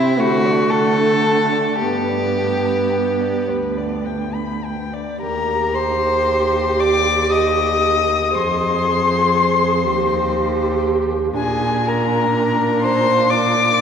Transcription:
0.00 0.21 C4 medium
0.00 0.21 E4 medium
0.00 0.18 E5 medium
0.19 1.52 D3 medium
0.19 1.82 A3 medium
0.19 0.72 F#4 medium
0.19 0.46 C5 medium
0.45 0.72 D5 medium
0.70 1.80 A4 medium
0.70 0.99 F#5 medium
0.97 1.25 A5 medium
1.24 1.54 F#5 medium
1.52 1.80 D5 medium
1.80 3.20 G2 medium
1.80 4.33 B3 medium
1.80 3.45 G4 medium
1.80 2.10 B4 medium
2.09 2.39 D5 soft
2.37 2.68 G5 soft
2.66 2.94 B5 soft
2.92 3.22 G5 soft
3.21 3.52 D5 soft
3.49 4.92 D2 medium
3.49 3.79 B4 medium
3.77 4.07 D5 soft
4.06 4.36 G5 soft
4.34 4.66 B5 soft
4.64 4.95 G5 soft
4.93 5.21 D5 soft
5.20 8.36 D#2 medium
5.20 8.30 G4 medium
5.20 5.76 A#4 medium
5.20 5.77 A#5 medium
5.75 6.81 C5 medium
5.75 6.82 C6 medium
6.79 7.33 D5 medium
6.79 7.31 D6 loud
7.31 8.33 D#5 medium
7.31 8.36 D#6 loud
8.34 9.87 F2 medium
8.34 9.82 G#4 medium
8.34 10.82 C5 medium
8.34 10.86 C6 medium
9.85 11.36 D#2 medium
9.85 11.33 G4 medium
11.35 13.81 A#2 medium
11.35 13.81 D4 medium
11.35 11.89 G#4 medium
11.35 11.89 G#5 medium
11.87 12.85 A#4 medium
11.87 12.81 A#5 medium
12.82 13.32 C5 medium
12.82 13.32 C6 loud
13.30 13.81 D5 medium
13.30 13.81 D6 loud

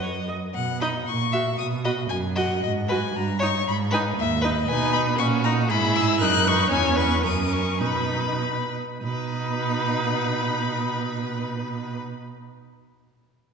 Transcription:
0.00 0.33 F#2 medium
0.00 0.09 C#5 medium
0.00 0.26 D#5 medium
0.28 0.36 D#5 medium
0.54 0.99 B2 medium
0.54 0.79 F#5 loud
0.81 0.93 D#4 medium
0.81 0.94 D#5 medium
0.81 0.89 B5 medium
1.07 1.51 A#2 medium
1.07 1.58 C#6 loud
1.32 1.45 F#4 medium
1.32 1.44 E5 medium
1.58 2.02 B2 medium
1.58 1.66 D#6 loud
1.85 1.97 F#4 medium
1.85 1.97 D#5 medium
1.85 1.93 B5 medium
2.09 2.54 F#2 medium
2.09 2.17 G#5 loud
2.36 2.49 F#4 medium
2.36 2.48 D#5 medium
2.36 2.62 F#5 medium
2.63 3.06 G#2 medium
2.63 2.71 D#5 loud
2.88 3.01 F#4 medium
2.88 3.00 B4 medium
2.88 3.18 G#5 medium
3.15 3.58 G2 medium
3.15 3.41 A#5 loud
3.39 3.53 D#4 medium
3.39 3.52 C#5 medium
3.39 3.66 C#6 loud
3.66 4.09 G#2 loud
3.66 3.76 B5 loud
3.91 4.04 D#4 medium
3.91 4.03 B4 medium
3.91 4.01 G#5 loud
4.18 4.60 D#2 loud
4.18 4.45 E5 loud
4.41 4.55 D#4 medium
4.41 4.54 B4 medium
4.41 4.70 D#5 loud
4.68 5.21 B2 medium
4.68 5.16 D#4 medium
4.68 5.20 B4 loud
4.68 4.92 G#5 loud
4.93 5.01 B5 loud
5.18 5.72 A#2 loud
5.18 5.47 C#4 loud
5.18 5.70 F#4 medium
5.18 5.26 C#6 loud
5.44 5.70 D#4 medium
5.44 5.52 A#5 loud
5.69 6.23 G#2 loud
5.69 6.23 E4 loud
5.69 6.19 G#4 loud
5.69 5.97 B5 loud
5.96 6.20 E6 loud
6.20 6.70 F#2 loud
6.20 6.73 D#4 loud
6.20 6.47 A#4 medium
6.20 6.49 F#6 loud
6.45 6.70 B4 medium
6.45 6.71 C#6 loud
6.68 7.26 E2 loud
6.68 7.23 C#4 medium
6.68 6.97 C#5 loud
6.68 6.97 G#5 loud
6.96 7.24 B4 medium
6.96 7.24 C#6 loud
7.23 7.82 F#2 medium
7.23 7.82 C#4 medium
7.23 7.80 A#4 medium
7.23 7.54 D#6 loud
7.53 7.80 C#6 loud
7.81 8.78 B2 medium
7.81 8.78 D#4 medium
7.81 8.76 B4 medium
7.81 8.69 B5 loud
9.02 11.98 B2 medium
9.02 11.99 D#4 medium
9.02 11.99 B4 medium
9.02 12.00 B5 loud

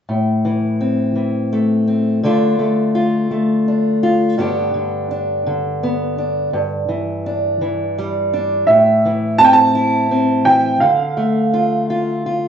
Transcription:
0.09 2.24 A2 medium
0.45 1.14 E3 soft
0.81 1.86 C4 soft
1.16 2.19 E3 soft
1.53 2.20 A3 soft
1.88 2.19 C4 soft
2.23 4.37 D3 medium
2.23 2.58 A3 soft
2.23 3.68 D4 soft
2.23 2.94 F4 medium
2.59 3.30 A3 soft
2.95 4.02 F4 medium
3.31 4.34 A3 soft
3.68 4.39 D4 soft
4.03 4.35 F4 medium
4.38 6.49 G2 medium
4.38 4.73 D3 soft
4.38 5.82 B3 soft
4.38 5.10 D4 soft
4.38 6.50 G4 medium
4.74 5.45 D3 soft
5.11 6.17 D4 soft
5.46 6.88 D3 soft
5.83 6.50 B3 soft
6.18 6.50 D4 soft
6.53 8.63 G2 medium
6.89 7.60 E3 soft
7.26 8.32 D4 soft
7.61 8.64 E3 soft
7.98 8.69 G3 soft
8.33 8.64 D4 soft
8.67 10.82 A2 medium
8.67 9.41 E5 medium
9.05 10.45 E3 soft
9.38 10.10 C4 soft
9.38 9.46 A5 loud
9.45 9.52 G5 medium
9.53 10.49 A5 medium
9.75 10.82 E4 soft
10.11 10.78 C4 soft
10.45 10.78 E3 soft
10.45 10.82 G5 medium
10.80 12.48 D3 medium
10.80 12.20 F5 medium
11.17 12.48 A3 medium
11.54 11.89 F4 medium
11.90 12.25 F4 medium
12.26 12.48 F4 soft

